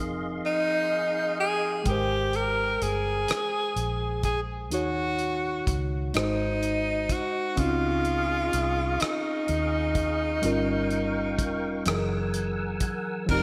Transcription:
Already playing: F1 F3 C4 D#4 G#4 A#4 D#5 F5 C6
0.46 D#4
1.40 G#4
1.84 G#1 G#3 G5, kick, closed hi-hat
1.88 G4 A#4 C5
2.33 A#4, closed hi-hat
2.82 G1 G#4, closed hi-hat
3.28 muted fingered electric bass stroke, cross-stick, closed hi-hat
3.76 A#1, closed hi-hat
4.23 G#4, kick, closed hi-hat
4.71 D#2 D#3 D#4 F#4 C#5, closed hi-hat
5.19 closed hi-hat
5.67 C#2, kick, closed hi-hat
6.14 G#1 G#3 D#4 F#4, cross-stick, closed hi-hat
6.18 C5
6.63 closed hi-hat
7.09 F#4, kick, closed hi-hat
7.56 C#2 C4 C#4 F4 G#4 D#5 F5 C#6, kick, closed hi-hat
7.61 D#4 F4
8.05 closed hi-hat
8.53 C2, closed hi-hat
9.00 D#4, cross-stick, closed hi-hat
9.48 D#2, closed hi-hat
9.95 kick, closed hi-hat
10.42 G1 G3 C#4 F4 A#4 F5 G5 C#6, closed hi-hat
10.46 A#4
10.91 closed hi-hat
11.39 F1, kick, closed hi-hat
11.85 F#1 E3 F#3 G#4 F#5 G#5 E6, cross-stick, closed hi-hat
11.90 A#4
12.34 closed hi-hat
12.80 kick, closed hi-hat
13.26 F1 F3 C4, kick, crash
13.31 D#4 G4 A#4

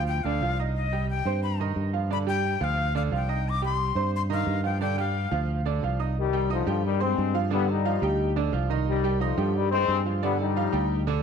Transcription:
Already playing: D2 F3 F4 F5
0.08 G5
0.24 D2 D3 D4 D5 F5
0.41 C2 F3 F4 F5
0.59 D#4 D#5 D#6
0.76 D#5
0.92 G3 G4 G5
1.10 G5
1.25 G2 C4 C5 C6
1.43 B5
1.60 D#3 D#4 D#5
1.76 G2
1.93 F3 F4 F5
2.10 D3 D4 D5 B5
2.27 G3 G4 G5
2.60 D2 F3 F4 F5
2.95 D3 D4 D5 F5
3.11 C2 F3 F4 F5
3.16 G5
3.29 D#4 D#5 D#6
3.49 D6
3.62 G3 G4 G5 C6
3.95 G2 C4 C5 C6
4.16 C6
4.30 D#3 D#4 D#5 F5
4.47 G2
4.64 F3 F4 F5 G5
4.81 D3 D4 D5 G5
4.98 G3 G4 F5 G5
5.31 D2 F3 F4 F5
5.65 D3 D4 D5
5.83 C2 F3 F4 F5
6.00 D#4 D#5 D#6
6.17 D#3 G3
6.33 G3 G4 G5
6.50 D3 F3 D#4 D#5 D#6
6.67 G2 G3 G4 G5
6.85 D#3 G3
7.00 G#3 C4 C5 C6
7.18 G2
7.34 F3 F4 F5
7.50 D3 G3 B3 D4 D5
7.68 G3 D#4
7.85 F3 F4 F5
8.02 D2 G3 G4 G5
8.36 D3 D4 D5
8.52 C2 F3 F4 F5
8.70 D#3 D#4 D#5
8.88 D#3 G3
9.04 G3 G4 G5
9.21 D3 F3 D#4 D#5 D#6
9.38 G2 G3 G4 G5
9.56 D#3 G3
9.72 G#3 C4 C5 C6
9.88 G2
10.05 F3 F4 F5
10.22 D3 G3 B3 D4 D5
10.40 G3 D#4
10.56 F3 F4 F5
10.72 D2 G3 G4 G5
11.07 D3 D4 D5

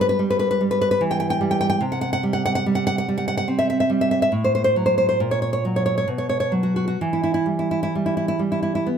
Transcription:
Already playing: G2 G3
0.01 B4
0.09 B4
0.19 G3
0.30 B4
0.39 B4
0.51 B4
0.61 G3
0.71 B4
0.81 B4
0.91 B4
1.01 E3
1.11 G5
1.20 G5
1.30 G5
1.41 G3
1.51 G5
1.61 G5
1.70 G5
1.81 C3
1.92 F#5
2.01 F#5
2.13 F#5
2.23 G3
2.33 F#5
2.46 F#5
2.55 F#5
2.66 G3
2.75 F#5
2.87 F#5
2.98 F#5
3.08 G3
3.18 F#5
3.28 F#5
3.37 F#5
3.48 C4
3.59 E5
3.70 E5
3.80 E5
3.90 G3
4.01 E5
4.11 E5
4.22 E5
4.32 A2
4.44 C5
4.55 C5
4.64 C5
4.76 F#3
4.86 C5
4.98 C5
5.09 C5
5.20 A#2
5.31 C#5
5.42 C#5
5.53 C#5
5.65 F#3
5.76 C#5
5.86 C#5
5.98 C#5
6.08 B2
6.18 C#5
6.29 C#5
6.40 C#5
6.52 F#3
6.63 F#4
6.76 F#4
6.88 F#4
7.01 E3
7.13 E4
7.24 E4
7.34 E4
7.46 G3
7.59 E4
7.71 E4
7.83 E4
7.95 G3
8.06 E4
8.17 E4
8.28 E4
8.39 G3
8.52 E4
8.63 E4
8.75 E4
8.86 B3

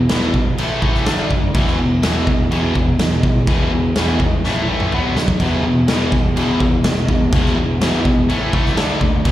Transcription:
0.09 E2 B2 E3, snare, crash
0.34 E2 B2, kick
0.58 A1 A2 E3 A3, crash
0.81 A1 A2 E3 A3, kick
0.95 snare
1.06 D2 D3 A3 D4, snare, crash
1.30 F#2 D3 A3, kick
1.54 E2 B2 E3, kick, crash
1.67 snare
1.78 E2 B2
2.02 E2 B2 E3, snare, crash
2.27 E2 B2, kick
2.51 E2 B2 E3, crash
2.75 E2 B2, kick
2.99 E2 B2, snare, crash
3.23 E2 B2, kick
3.47 E2 B2 E3, kick, crash
3.71 E2 B2
3.95 E2 B2 E3, snare, crash
4.20 E2 B2, kick
4.43 A1 A2 E3 A3, snare
4.56 high tom
4.67 A#1 A2 E3 A3
4.80 mid tom
4.92 B1 B2 F#3 B3, mid tom
5.16 D2 B2 F#3, snare
5.28 kick
5.40 E2 B2 E3, kick, crash
5.63 E2 B2
5.88 E2 B2 E3, snare, crash
6.12 E2 B2, kick
6.35 E2 B2 E3, crash
6.60 E2 B2, kick
6.83 E2 B2, snare, crash
7.08 E2 B2, kick
7.32 E2 B2 E3, kick, crash
7.46 snare
7.55 E2 B2
7.80 E2 B2 E3, snare, crash
8.05 E2 B2, kick
8.27 A1 A2 E3 A3, crash
8.53 C#2 A2 E3 A3, kick
8.66 snare
8.76 D2 D3 A3 D4, snare, crash
9.00 D#2 D3 A3, kick
9.24 E2 B2 E3, kick, crash

